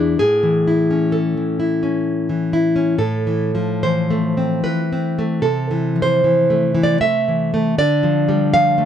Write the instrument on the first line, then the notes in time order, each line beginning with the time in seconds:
nylon-string guitar
Already playing: E2 E3 D4 E4 G#4
0.19 A2 G#4
0.43 E3
0.68 E4
0.91 C#4
1.12 A4
1.37 E3
1.60 E4
1.83 C#4
2.29 E3
2.53 E4
2.76 C#4
2.98 A2 A4
3.27 E3
3.55 F3
3.83 E3 C5
4.10 A3
4.37 C4
4.64 E3 B4
4.93 C4
5.19 A3
5.42 C3 A4
5.71 E3
5.96 F3
6.02 C5
6.24 E3
6.50 A3
6.75 E3
6.83 D5
7.01 A3 E5
7.28 E3
7.54 A3
7.78 D3 D5
8.03 F3
8.29 G3
8.54 F3 F5
8.78 A3